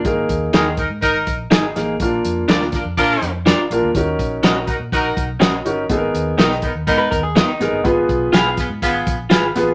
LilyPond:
<<
  \new Staff \with { instrumentName = "Clean electric guitar" } { \time 4/4 \key aes \dorian \tempo 4 = 123 r4 <ees' aes' bes' ees''>8 r4. <ees' aes' bes' ees''>8 r8 | r4 <d' f' bes' d''>8 r4. <d' f' bes' d''>8 r8 | r4 <des' ges' bes' ees''>8 r4. <des' ges' bes' ees''>8 r8 | r4 <ces' ees' bes' ees''>8 r4. <ces' ees' bes' ees''>8 r8 |
r4 <f' aes' ces'' f''>8 r4. <f' aes' ces'' f''>8 r8 | }
  \new Staff \with { instrumentName = "Clean electric guitar" } { \time 4/4 \key aes \dorian r1 | r1 | r1 | r2 r16 ces''16 bes'16 aes'16 f'16 ees'8. |
r1 | }
  \new Staff \with { instrumentName = "Horn section" } { \time 4/4 \key aes \dorian r4 <ees' bes'>16 r16 <ees' bes'>16 r16 <ees' bes'>8. r4 r16 | r4 <d' f' bes'>16 r16 <d' f' bes'>16 r16 <d' f' bes'>8. r4 r16 | r4 <ees' ges' bes'>16 r16 <ees' ges' bes'>16 r16 <ees' ges' bes'>8. r4 r16 | r4 <ces' ees' bes'>16 r16 <ces' ees' bes'>16 r16 <ces' ees' bes'>8. r4 r16 |
r4 <ces' f' aes'>16 r16 <ces' f' aes'>16 r16 <ces' f' aes'>8. r4 r16 | }
  \new Staff \with { instrumentName = "Upright piano" } { \time 4/4 \key aes \dorian <bes ees' aes' bes'>4. r2 <bes ees' aes' bes'>8 | <bes d' f' bes'>4. r2 <bes d' f' bes'>8 | <des' ees' ges' bes'>4. r2 <des' ees' ges' bes'>8 | <ces' ees' aes' a' bes'>4. r2 <ces' ees' aes' bes'>8 |
<ces' f' aes' ces''>4. r2 <ces' f' aes' ces''>8 | }
  \new Staff \with { instrumentName = "Fingered electric bass" } { \clef bass \time 4/4 \key aes \dorian aes,,8 ees,8 ees,8. aes,16 aes,,8 bes,,8 aes,,8 a,,8 | bes,,8 f,8 d,8. f,16 bes,8 f,8. r16 bes,,16 d,16 | ees,8 bes,,8 bes,,8. bes,16 bes,,8 ces,8 bes,,8 g,,8 | aes,,8 ees,8 ces,8. ees,16 aes,8 ees,8. r16 aes,,16 g,,16 |
aes,,8 ces,8 ces,8. aes,16 aes,,8 bes,,8 aes,,8 a,,8 | }
  \new DrumStaff \with { instrumentName = "Drums" } \drummode { \time 4/4 <hh bd>8 <hh bd>8 <hh sn>8 <hh bd>8 <hh bd>8 <hh bd>8 <hh sn>8 <hh sn>8 | <hh bd>8 hh8 <hh sn>16 sn16 <hh bd sn>8 <hh bd>8 hh8 <hh sn>8 hh8 | <hh bd>8 <hh bd>8 <hh sn>8 <hh bd>8 <hh bd>8 <hh bd>8 <hh sn>8 hh8 | <hh bd>8 hh8 <hh sn>16 sn16 <hh bd>8 <hh bd>8 <hh bd>8 <hh sn>8 <hh sn>8 |
<hh bd>8 <hh bd>8 <hh sn>8 <hh bd sn>8 <hh bd>8 <hh bd>8 <hh sn>8 <hh sn>8 | }
>>